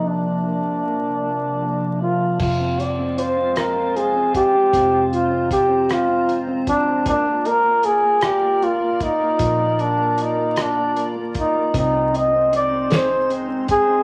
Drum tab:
CC |------|x-----|------|------|
HH |------|-xxxxx|xxxxxx|xxxxxx|
SD |------|---r--|---r--|---r--|
BD |------|o----o|o-o--o|o----o|

CC |------|------|
HH |xxxxxx|xxxxxx|
SD |---r--|---o--|
BD |o----o|o----o|